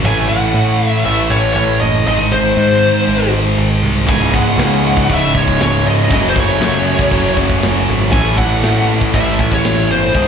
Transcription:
Already playing: A3 C#5
0.03 A1 A2 E3 A3 C#4 E4 G#5
0.29 A1 F#5
0.54 A2
0.86 E5
1.04 A1 A2 E3 A3 E5
1.30 A1 C#5
1.54 A1 C#5
1.80 F#1 D#5
2.04 G#1 G#2 D#3 G#3 C4 D#4 C5 D#5
2.08 G#3
2.32 G#1 C5
2.57 G#2
3.07 G#1 G#2 D#3 G#3
3.32 G#1
3.57 G#1
3.82 C2
4.07 C#1 C#2 G#2 C#3 G#3 C#4 E4 C#5 G#5, kick, crash
4.34 C#1 F#5, kick, crash
4.58 C#2, snare, crash
4.85 crash
4.97 kick
5.09 C#1 C#2 G#2 C#3, kick, crash
5.14 E5
5.35 C#1 C#5, kick, crash
5.48 kick
5.60 C#1 C#5, snare, crash
5.86 C#1 D#5, crash
6.10 F#1 F#2 C#3 F#3 A3 C#4 F#4 D#5, kick, crash
6.29 C5
6.36 F#1 C#5, kick, crash
6.61 F#2, snare, crash
6.87 crash
6.99 kick
7.11 F#1 F#2 C#3 F#3, kick, crash
7.37 F#1, kick, crash
7.50 kick
7.62 F#1, snare, crash
7.88 G#1, crash
8.12 A1 A2 E3 A3 C#4 E4 A4 G#5, kick, crash
8.38 A1 F#5, kick, crash
8.63 A2, snare, crash
8.89 crash
9.01 kick
9.13 A1 A2 E3 A3 E5, kick, crash
9.39 A1, kick, crash
9.52 C#5, kick
9.64 A1, snare, crash
9.90 G1 C5, crash
10.14 G#1 G#2 D#3 G#3 C4 D#4 G#4 C5, kick, crash

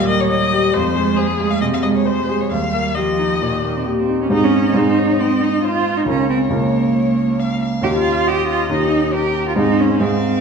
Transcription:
Already playing: D#2 A#2 G3 A#3 G4 C#5
0.08 A#3 D#5
0.21 C#5
0.30 C#5 D#5
0.52 G4
0.73 F2 G#3 C5
0.96 G#3
1.17 G#4 C5
1.40 G#4
1.51 F5
1.61 C3 D#5
1.74 F5
1.83 G#3 D#5
1.96 C#5
2.05 C5
2.29 G#4
2.40 C#5
2.49 D#2 G3 F5
2.73 A#3
2.95 F3 G4 D#5
3.19 D#4
3.41 A#2 D#3
3.64 A#3
3.76 C4
3.86 A#3 G4
3.99 C4
4.09 D#4
4.22 C#4
4.29 G#2 C4 D#4 G#4 D#5
4.44 C#4
4.74 G#2 C4 D#4 G#4 C5
4.98 C#5
5.20 C4 D#5
5.41 D#4
5.63 F4 C5
5.97 D#4
6.05 C#2 C#4 F4 A#4 C#5
6.29 C4
6.50 C#2 A#3 C#4 F4 A#4
7.40 F5
7.62 F5
7.81 D#2 C#4 D#4 G4
7.95 F4
8.28 G4 D#5
8.49 F4
8.69 D#2 C#4 D#4 G4
9.14 G4 A#4
9.48 F4
9.56 G#2 C4 D#4 G#4 C5
9.81 C#4
10.00 G#2 C4 D#4 G#4 F5

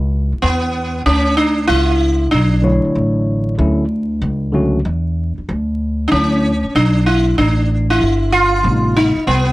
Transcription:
Already playing: C#2
0.32 muted upright bass stroke
0.42 E2 B3
1.06 D2 C#4
1.37 D4
1.67 C#2 E4
2.31 B1 D4
2.62 D3 F#3 A3 E4 C#5
2.85 muted upright bass stroke
2.95 A1
3.58 D2 D3 F#3 A3 C#4 E4
4.22 C#2
4.53 D3 F#3 A3 C#4 F#4
4.85 E2
5.38 muted upright bass stroke
5.49 D2
6.08 D3 F#3 A3 C#4 D4
6.12 D2 C#4 E4
6.64 muted upright bass stroke
6.75 B1 D4
7.06 E4
7.38 A1 D4
7.90 E4
8.01 G1
8.32 F4
8.63 A1 C3 G3 A3 B3 D4
8.72 D#4
8.96 D#4
9.16 muted upright bass stroke
9.27 C2 B3

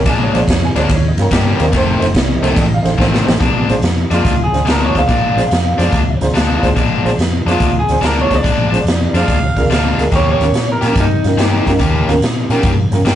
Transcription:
0.05 A#1 A#2 F3 G#3 D4 G#5, kick, snare, ride
0.23 C#5
0.33 A#1 F4 G#4 C5 D5, snare, ride
0.37 C#5
0.47 F2 C#5, kick, snare, ride
0.65 G#5
0.74 D2 A#2 F3 G#3 D4 F4 G#4 C5 D5, snare, ride
0.79 C#5
0.89 D#2, kick, snare, ride
0.94 C#5
1.08 D#5
1.17 G2 F4 G4 A#4 C#5, snare, ride
1.22 A#5
1.31 G2 D#3 A#3 C#4 G4, kick, snare, ride
1.37 D#5
1.51 C#5
1.59 D#2 F4 G4 A#4 C5, snare, ride
1.64 D#5
1.72 F1 F2 D#3 A3 C4, kick, snare, ride
1.77 C5
1.99 F1 D#4 G4 A4 C5, ride
2.04 snare
2.14 C2, kick, snare, ride
2.41 C2 F2 D#3 A3 C4 D#4 G4 A4 C5, ride
2.45 snare
2.56 A1 D5, kick, snare, ride
2.60 D#5
2.74 F5
2.83 A1 D#4 G4 A4 C5, ride
2.87 snare
2.98 A1 F2 D#3 A3 C4 C5 D#5, kick, snare
3.14 snare
3.25 A1 D#4 G4 A4 C5, snare
3.39 A#1 A#2 F3 G#3 D4, kick, snare, closed hi-hat
3.68 A#1 D4 F4 G#4 C5, snare, closed hi-hat
3.82 F2, snare, closed hi-hat
4.10 F2 A#2 F3 G#3 D4 F4 G#4 D5, snare, closed hi-hat
4.25 D2, kick, snare, closed hi-hat
4.44 G#4
4.52 D2 D4 F4 G#4 C5, snare, closed hi-hat
4.65 D2 A#2 F3 G#3 D4, snare, closed hi-hat
4.71 A#4
4.84 C#5
4.95 D2 D4 F4 G#4 C5, kick, snare, closed hi-hat
4.99 F5
5.08 A#1 A#2 F3 G#3 D4, kick, snare, closed hi-hat
5.35 A#1 D4 F4 G#4 C5, closed hi-hat
5.40 snare
5.51 F2, snare, closed hi-hat
5.77 F2 A#2 F3 G#3 D4 F4 G#4 C5, closed hi-hat
5.81 snare
5.92 D2, kick, closed hi-hat
6.21 D2 D4 F4 G#4 C5 A#5, snare, closed hi-hat
6.34 D2 A#2 F3 G#3 D4 F5, snare, closed hi-hat
6.62 D2 D4 F4 G#4 C5, kick, snare, closed hi-hat
6.76 A#1 A#2 F3 G#3 D4, kick, closed hi-hat
7.03 A#1 D4 F4 G#4 C5, closed hi-hat
7.08 snare
7.18 F2, snare, closed hi-hat
7.45 F2 A#2 F3 G#3 D4 F4 G#4 C5, closed hi-hat
7.50 F4, snare
7.60 D2, kick, closed hi-hat
7.79 G#4
7.88 D2 D4 F4 G#4 C5, snare, closed hi-hat
8.01 D2 A#2 F3 G#3 D4, snare, closed hi-hat
8.06 A#4
8.21 C#5
8.30 D2 D4 F4 G#4 C5, kick, snare, closed hi-hat
8.35 D5
8.43 A#1 A#2 F3 G#3 D4, kick, closed hi-hat
8.71 A#1 D4 F4 G#4 C5, closed hi-hat
8.75 snare
8.83 F2, closed hi-hat
8.88 snare
9.13 F2 A#2 F3 G#3 D4 F4 G#4 C5 F5, snare, closed hi-hat
9.28 D2, kick, closed hi-hat
9.56 D2 D4 F4 G#4 A#4, kick, snare, closed hi-hat
9.69 D2 A#2 F3 G#3 D4 F5, snare, closed hi-hat
9.97 D2 D4 F4 G#4 A#4, snare, closed hi-hat
10.11 D#2 D#3 A#3 C#4 G4, kick, snare, closed hi-hat
10.15 C#5
10.31 C#5
10.40 D#2 C#4 F4 G4 A#4, snare, closed hi-hat
10.52 A#2, snare, closed hi-hat
10.72 A#4
10.81 A#2 D#3 A#3 C#4 F4 G4 A#4, snare, closed hi-hat
10.95 G2, kick, closed hi-hat
11.00 D#4
11.24 G2 C#4 F4 G4 A#4, snare, closed hi-hat
11.37 G2 D#3 A#3 C#4 G4, snare, closed hi-hat
11.65 G2 C#4 F4 G4 A#4, kick, snare, closed hi-hat
11.79 D#2 D#3 A#3 C#4 G4, kick, closed hi-hat
12.08 D#2 C#4 F4 G4 A#4, snare, closed hi-hat
12.21 A#2, snare, closed hi-hat
12.49 A#2 D#3 A#3 C#4 F4 G4 A#4, snare, closed hi-hat
12.63 G2, kick, closed hi-hat
12.91 G2 C#4 F4 G4 A#4, snare, closed hi-hat
13.05 G2 D#3 A#3 C#4 G4, snare, closed hi-hat

